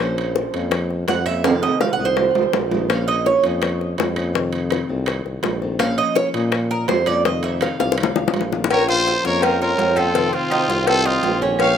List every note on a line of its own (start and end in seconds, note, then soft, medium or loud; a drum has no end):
0.00 0.48 A#1 medium
0.00 0.72 F3 medium
0.00 0.54 A#3 medium
0.00 0.54 C#4 medium
0.00 0.54 F4 medium
0.00 0.68 C5 medium
0.18 high timbale medium
0.36 high bongo medium
0.36 low timbale medium
0.54 1.04 F2 loud
0.54 0.72 A#3 medium
0.54 0.72 C#4 medium
0.54 0.71 F4 medium
0.54 high bongo soft
0.54 high timbale medium
0.71 1.07 F3 medium
0.71 1.08 C#4 medium
0.71 1.08 F4 medium
0.71 high bongo medium
0.71 high timbale medium
0.71 claves medium
0.90 high bongo soft
1.08 1.66 F2 loud
1.08 1.26 F#5 medium
1.08 muted nylon-string guitar stroke medium
1.08 high bongo medium
1.08 low bongo medium
1.08 high timbale medium
1.08 low timbale medium
1.26 1.44 A#3 medium
1.26 1.44 C#4 medium
1.26 1.43 F4 medium
1.26 1.44 E5 loud
1.26 high bongo soft
1.26 high timbale medium
1.26 claves medium
1.44 1.98 C3 medium
1.44 1.98 D#3 medium
1.44 1.99 A3 medium
1.44 1.98 C4 medium
1.44 1.99 F4 medium
1.44 1.62 F5 medium
1.44 high bongo medium
1.44 high timbale loud
1.62 1.80 D#5 medium
1.62 high bongo soft
1.62 high timbale medium
1.80 1.92 F5 loud
1.80 high bongo medium
1.80 low timbale medium
1.80 claves medium
1.93 2.05 F#5 loud
1.98 2.32 C2 medium
1.98 2.15 D#3 medium
1.98 2.15 A3 medium
1.98 2.16 C4 medium
1.98 2.16 F4 medium
2.05 2.56 C5 medium
2.16 2.52 D#3 soft
2.16 2.52 A3 medium
2.16 2.53 C4 medium
2.16 2.53 F4 medium
2.16 high bongo medium
2.16 low timbale medium
2.16 claves medium
2.35 2.51 C2 medium
2.35 high bongo soft
2.35 low timbale loud
2.52 3.38 A#1 medium
2.52 muted nylon-string guitar stroke medium
2.52 high bongo medium
2.52 low bongo medium
2.52 low timbale medium
2.71 2.88 D#3 medium
2.71 2.89 A3 medium
2.71 2.89 C4 medium
2.71 2.88 F4 medium
2.71 high bongo soft
2.71 low timbale loud
2.88 3.61 F3 medium
2.88 3.43 A#3 medium
2.88 3.43 C#4 medium
2.88 3.43 F4 medium
2.88 3.07 F5 medium
2.88 high bongo medium
2.88 high timbale medium
2.88 claves medium
3.08 3.25 D#5 loud
3.08 high timbale medium
3.26 3.44 C#5 medium
3.26 high bongo medium
3.26 low timbale medium
3.43 3.95 F2 medium
3.43 3.60 A#3 medium
3.43 3.61 C#4 medium
3.43 3.61 F4 medium
3.43 high bongo soft
3.43 high timbale medium
3.61 3.97 F3 medium
3.61 3.97 A#3 soft
3.61 3.97 C#4 medium
3.61 3.98 F4 medium
3.61 high bongo medium
3.61 high timbale medium
3.61 claves medium
3.81 high bongo soft
3.98 4.84 F2 medium
3.98 muted nylon-string guitar stroke medium
3.98 high bongo medium
3.98 low bongo medium
3.98 high timbale medium
3.98 low timbale medium
4.16 4.33 A#3 medium
4.16 4.34 C#4 medium
4.16 4.34 F4 medium
4.16 high bongo soft
4.16 high timbale medium
4.16 claves medium
4.33 4.88 C3 medium
4.33 4.88 D#3 medium
4.33 4.88 A3 medium
4.33 4.88 C4 medium
4.33 4.89 F4 medium
4.33 high bongo medium
4.53 high bongo soft
4.53 high timbale medium
4.70 high bongo medium
4.70 high timbale medium
4.70 low timbale medium
4.70 claves medium
4.89 5.23 C2 loud
4.89 5.05 D#3 medium
4.89 5.06 A3 medium
4.89 5.07 C4 medium
4.89 5.07 F4 medium
5.06 5.42 D#3 soft
5.06 5.43 A3 medium
5.06 5.44 F4 medium
5.06 high bongo medium
5.06 high timbale loud
5.06 claves medium
5.25 5.42 C2 medium
5.25 high bongo soft
5.43 6.01 A#1 medium
5.43 muted nylon-string guitar stroke medium
5.43 high bongo medium
5.43 low bongo medium
5.43 high timbale medium
5.43 low timbale medium
5.62 5.78 D#3 medium
5.62 5.79 A3 medium
5.62 5.80 C4 medium
5.62 5.79 F4 medium
5.62 high bongo soft
5.79 6.51 F3 medium
5.79 6.33 A#3 medium
5.79 6.34 C#4 medium
5.79 6.34 F4 medium
5.79 5.97 F5 loud
5.79 high bongo medium
5.79 high timbale medium
5.79 claves medium
5.98 6.16 D#5 medium
5.98 high timbale medium
6.15 6.27 C#5 loud
6.15 high bongo medium
6.15 low timbale medium
6.34 6.85 A#2 loud
6.34 6.51 A#3 medium
6.34 6.52 C#4 medium
6.34 6.52 F4 medium
6.34 high bongo soft
6.34 high timbale medium
6.52 6.88 C#4 medium
6.52 6.88 F4 medium
6.52 high bongo medium
6.52 high timbale medium
6.52 claves medium
6.71 6.88 A#4 medium
6.71 high bongo soft
6.88 7.74 F2 medium
6.88 7.06 C5 medium
6.88 muted nylon-string guitar stroke medium
6.88 high bongo medium
6.88 low bongo medium
6.88 high timbale medium
6.88 low timbale medium
7.06 7.24 A#3 medium
7.06 7.24 C#4 medium
7.06 7.24 F4 medium
7.06 7.25 D5 medium
7.06 high bongo soft
7.06 high timbale medium
7.06 claves medium
7.24 7.78 C3 medium
7.24 7.78 D#3 medium
7.24 7.79 A3 medium
7.24 7.79 C4 medium
7.24 7.78 F4 medium
7.24 7.43 D#5 medium
7.24 high bongo medium
7.43 7.61 E5 medium
7.43 high bongo soft
7.43 high timbale medium
7.61 7.79 F5 medium
7.61 high bongo medium
7.61 high timbale loud
7.61 low timbale medium
7.61 claves medium
7.79 8.13 C2 medium
7.79 7.96 D#3 medium
7.79 7.97 A3 medium
7.79 7.97 C4 medium
7.79 7.97 F4 medium
7.79 8.57 F5 loud
7.79 high bongo medium
7.92 high bongo medium
7.98 8.33 D#3 medium
7.98 8.33 A3 medium
7.98 8.33 C4 medium
7.98 8.34 F4 medium
7.98 high timbale loud
7.98 claves medium
8.03 low bongo loud
8.16 8.33 C2 medium
8.16 low bongo medium
8.28 low bongo loud
8.33 9.18 A#1 medium
8.33 muted nylon-string guitar stroke medium
8.33 high timbale medium
8.33 low timbale medium
8.41 low bongo medium
8.52 8.70 D#3 medium
8.52 8.70 A3 medium
8.52 8.70 C4 medium
8.52 8.69 F4 medium
8.52 low bongo medium
8.64 low bongo medium
8.70 9.43 F3 medium
8.70 9.24 A#3 medium
8.70 9.24 C#4 medium
8.70 9.24 F4 medium
8.70 8.88 A#4 medium
8.70 8.88 C#5 loud
8.70 cowbell loud
8.70 low agogo loud
8.70 claves medium
8.88 9.22 F4 medium
8.88 9.23 F4 medium
8.88 9.23 C5 loud
8.88 cowbell medium
9.06 cowbell medium
9.06 low timbale medium
9.06 low agogo medium
9.24 9.75 F2 loud
9.24 9.43 A#3 medium
9.24 9.42 C#4 medium
9.24 9.42 F4 medium
9.24 9.41 A#4 medium
9.24 9.60 A#4 medium
9.24 9.46 C#5 loud
9.24 cowbell medium
9.42 9.78 F3 soft
9.42 9.78 A#3 medium
9.42 9.78 C#4 medium
9.42 9.61 F4 medium
9.42 9.79 F4 medium
9.42 9.61 A#4 medium
9.42 cowbell loud
9.42 low agogo loud
9.42 claves medium
9.62 9.95 F4 medium
9.62 9.99 A#4 medium
9.62 9.96 C#5 medium
9.78 10.36 F2 medium
9.78 muted nylon-string guitar stroke medium
9.78 cowbell medium
9.78 low timbale medium
9.78 low agogo medium
9.96 10.15 A#3 medium
9.96 10.15 C#4 medium
9.96 10.14 F4 medium
9.96 10.15 F4 medium
9.96 10.33 F4 medium
9.96 10.35 A4 medium
9.96 cowbell medium
9.96 low agogo loud
9.96 claves medium
10.14 10.68 C3 medium
10.14 10.69 D#3 medium
10.14 10.68 A3 medium
10.14 10.50 C4 medium
10.14 10.68 C4 medium
10.14 10.68 F4 medium
10.14 cowbell loud
10.33 10.87 C4 medium
10.33 10.89 F4 loud
10.33 low agogo medium
10.51 10.69 D#4 medium
10.51 cowbell medium
10.51 low timbale medium
10.51 low agogo loud
10.51 claves medium
10.68 11.19 C2 loud
10.68 10.85 D#3 medium
10.68 10.86 A3 medium
10.68 10.86 C4 medium
10.68 10.86 F4 medium
10.68 11.05 F4 medium
10.68 cowbell medium
10.87 11.22 D#3 soft
10.87 11.22 A3 medium
10.87 11.23 C4 medium
10.87 11.06 F4 medium
10.87 11.08 A4 loud
10.87 cowbell loud
10.87 low agogo loud
10.87 claves medium
11.06 11.42 C4 medium
11.06 11.41 D#4 medium
11.06 11.42 F4 loud
11.23 11.78 A#1 loud
11.23 muted nylon-string guitar stroke medium
11.23 cowbell medium
11.23 low timbale medium
11.23 low agogo medium
11.41 11.58 D#3 medium
11.41 11.59 A3 medium
11.41 11.59 C4 medium
11.41 11.77 C#4 medium
11.41 11.59 F4 medium
11.41 low agogo medium
11.59 11.78 F3 medium
11.59 11.78 A#3 medium
11.59 11.78 C#4 medium
11.59 11.78 F4 medium
11.59 11.77 C#5 loud
11.59 11.78 F5 loud
11.59 cowbell loud
11.59 low agogo loud
11.59 claves medium